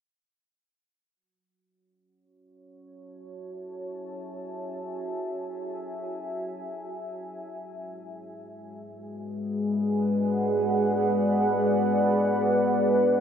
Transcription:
1.09 9.07 F#4 medium
1.43 9.96 E5 medium
1.60 7.41 C#5 medium
1.88 7.42 A5 medium
2.01 9.97 G#5 medium
7.42 13.20 G#3 medium
7.80 13.20 G#4 medium
8.42 13.20 D5 medium
8.54 13.20 B4 medium
8.54 13.20 F#5 medium

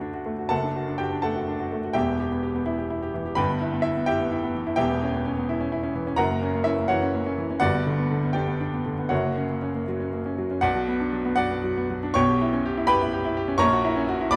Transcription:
0.00 0.46 D2 medium
0.00 0.26 A3 medium
0.00 0.53 D4 medium
0.00 0.14 F#4 medium
0.00 0.45 D5 medium
0.00 0.49 F#5 medium
0.14 0.33 F#4 medium
0.26 0.45 A3 medium
0.39 0.51 F#4 medium
0.49 1.92 F#1 medium
0.49 1.92 F#2 medium
0.49 0.96 A4 medium
0.49 0.96 F#5 medium
0.49 0.99 A5 medium
0.63 0.83 D4 medium
0.76 0.95 F#4 medium
0.88 1.07 D4 medium
0.98 1.19 F#4 medium
0.98 1.22 G4 medium
0.98 1.23 G5 medium
1.12 1.31 D4 medium
1.22 1.43 A3 medium
1.22 1.91 A4 medium
1.22 1.91 F#5 medium
1.22 1.95 A5 medium
1.36 1.55 F#4 medium
1.48 1.67 D4 medium
1.60 1.79 F#4 medium
1.72 1.91 A3 medium
1.84 1.96 F#4 medium
1.93 3.34 E1 medium
1.93 3.35 E2 medium
1.93 2.18 G4 medium
1.93 3.34 E5 medium
1.93 3.35 G5 medium
2.08 2.27 B3 medium
2.19 2.38 G4 medium
2.31 2.50 B3 medium
2.43 2.62 G4 medium
2.55 2.74 B3 medium
2.66 2.86 E4 medium
2.78 2.98 G4 medium
2.90 3.10 E4 medium
3.02 3.22 G4 medium
3.14 3.33 E3 medium
3.26 3.38 G4 medium
3.35 4.74 G1 medium
3.35 4.75 G2 medium
3.35 3.81 B4 medium
3.35 3.81 G5 medium
3.35 3.84 B5 loud
3.49 3.68 B3 medium
3.61 3.80 E4 medium
3.73 3.92 B3 medium
3.82 4.06 E4 medium
3.82 4.06 E5 medium
3.97 4.16 B3 medium
4.06 4.27 E4 medium
4.06 4.74 G4 medium
4.06 4.74 E5 medium
4.06 4.75 G5 loud
4.20 4.39 B3 medium
4.32 4.50 E4 medium
4.43 4.62 B3 medium
4.55 4.74 E3 medium
4.67 4.79 E4 medium
4.76 6.14 E1 medium
4.76 6.15 E2 medium
4.76 6.14 G4 medium
4.76 6.14 E5 medium
4.76 6.18 G5 loud
4.90 5.09 B3 medium
5.03 5.21 C#4 medium
5.15 5.33 B3 medium
5.26 5.44 C#4 medium
5.37 5.56 B3 medium
5.49 5.68 E4 medium
5.61 5.79 C#4 medium
5.72 5.91 E4 medium
5.83 6.02 C#4 medium
5.95 6.14 E3 medium
6.07 6.19 C#4 medium
6.16 7.57 F#1 medium
6.16 7.58 F#2 medium
6.16 6.62 A#4 medium
6.16 6.62 F#5 medium
6.16 6.65 A#5 loud
6.31 6.50 A#3 medium
6.43 6.62 C#4 medium
6.54 6.73 A#3 medium
6.64 6.85 C#4 medium
6.64 6.88 E4 medium
6.64 6.89 E5 medium
6.78 6.97 A#3 medium
6.88 7.09 E3 medium
6.88 7.57 F#4 medium
6.88 7.57 C#5 medium
6.88 7.58 F#5 medium
7.02 7.21 C#4 medium
7.15 7.33 A#3 medium
7.26 7.45 C#4 medium
7.38 7.57 E3 medium
7.51 7.62 C#4 medium
7.60 9.07 G1 medium
7.60 9.07 G2 medium
7.60 8.30 F#4 medium
7.60 8.30 D5 medium
7.60 8.34 F#5 loud
7.75 7.94 B3 medium
7.87 8.06 D3 medium
7.99 8.18 B3 medium
8.11 8.30 D3 medium
8.23 8.43 B3 medium
8.33 8.55 D4 medium
8.33 9.07 G4 medium
8.33 9.07 D5 medium
8.33 9.10 G5 medium
8.48 8.68 B3 medium
8.60 8.80 D4 medium
8.73 8.93 B3 medium
8.86 9.06 D3 medium
8.99 9.11 B3 medium
9.09 10.60 F#1 medium
9.09 10.60 F#2 medium
9.09 9.83 F#4 medium
9.09 9.83 C#5 medium
9.09 9.87 F#5 medium
9.25 9.45 A#3 medium
9.37 9.58 C#4 medium
9.50 9.70 A#3 medium
9.62 9.83 C#4 medium
9.75 9.95 A#3 medium
9.88 10.08 F#3 medium
10.00 10.21 C#4 medium
10.13 10.34 A#3 medium
10.26 10.46 C#4 medium
10.38 10.59 F#3 medium
10.51 10.64 C#4 medium
10.61 12.12 B1 medium
10.61 12.12 B2 medium
10.61 11.34 F#4 medium
10.61 11.34 D5 medium
10.61 11.34 F#5 loud
10.76 10.96 F#3 medium
10.88 11.08 B3 medium
11.00 11.21 D4 medium
11.13 11.33 F#3 medium
11.25 11.46 B3 medium
11.36 11.59 F#3 medium
11.36 12.12 F#4 medium
11.36 12.12 D5 medium
11.36 12.15 F#5 loud
11.51 11.72 B3 medium
11.64 11.85 F#3 medium
11.77 11.98 B3 medium
11.90 12.11 F#3 medium
12.03 12.16 D4 medium
12.14 13.55 B1 medium
12.14 13.56 B2 medium
12.14 12.84 C#5 medium
12.14 12.84 G5 medium
12.14 12.88 C#6 loud
12.29 12.48 G4 medium
12.42 12.61 E4 medium
12.53 12.72 C#4 medium
12.65 12.84 G4 medium
12.77 12.96 E4 medium
12.87 13.08 G4 medium
12.87 13.55 B4 medium
12.87 13.55 G5 medium
12.87 13.59 B5 loud
13.01 13.20 E4 medium
13.13 13.32 G4 medium
13.25 13.43 E4 medium
13.37 13.55 G4 medium
13.48 13.60 C#4 medium
13.58 14.30 A#1 medium
13.58 14.31 A#2 medium
13.58 14.28 C#5 loud
13.58 14.28 A#5 loud
13.58 14.31 C#6 loud
13.73 13.91 F#4 medium
13.85 14.04 E4 medium
13.96 14.16 C#4 medium
14.09 14.28 F#4 medium
14.21 14.33 E4 medium
14.31 14.36 D5 medium
14.31 14.36 B5 loud
14.31 14.36 D6 loud

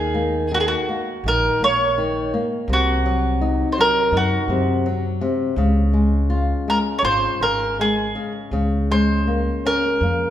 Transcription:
0.00 0.73 D#2 medium
0.00 0.50 D#3 medium
0.00 0.54 G#4 medium
0.14 0.50 A#3 soft
0.52 0.87 D#3 soft
0.52 0.60 F#4 medium
0.60 0.66 G#4 medium
0.68 1.28 F#4 medium
0.89 1.24 A#3 soft
1.24 1.48 A#1 medium
1.24 1.61 D#3 soft
1.28 1.64 A#4 medium
1.60 2.31 A#1 medium
1.60 1.97 A#3 soft
1.60 2.30 C#5 medium
1.98 2.32 D#3 soft
2.34 2.68 A#3 medium
2.68 3.62 C2 medium
2.68 4.48 C3 medium
2.73 3.68 F#4 medium
3.06 3.40 F#3 soft
3.41 3.76 D#4 medium
3.72 3.78 C5 medium
3.78 4.12 F#3 soft
3.78 4.16 A#4 medium
4.12 4.36 F#2 medium
4.12 4.48 D#4 soft
4.17 5.20 F#4 medium
4.48 5.19 F#2 medium
4.48 4.85 C3 soft
4.86 5.21 F#3 medium
5.21 5.57 C3 soft
5.56 6.52 C#2 medium
5.56 7.40 C#3 medium
5.93 6.29 G#3 soft
6.30 6.66 F4 soft
6.68 7.03 G#3 soft
6.68 6.77 A#4 medium
6.99 7.04 C#5 medium
7.03 7.27 G#1 medium
7.03 7.40 F4 soft
7.03 7.42 C5 medium
7.40 8.13 G#1 medium
7.40 7.77 C#3 soft
7.40 7.76 A#4 medium
7.79 8.15 G#3 soft
7.79 8.32 G#4 medium
8.15 8.51 C#3 soft
8.51 9.49 C#2 medium
8.51 10.30 C#3 soft
8.91 9.27 G#3 soft
8.91 9.66 C5 medium
9.27 9.64 A#3 soft
9.66 10.01 C#4 soft
9.66 10.30 A#4 medium
10.01 10.25 F2 medium
10.01 10.30 A#3 soft

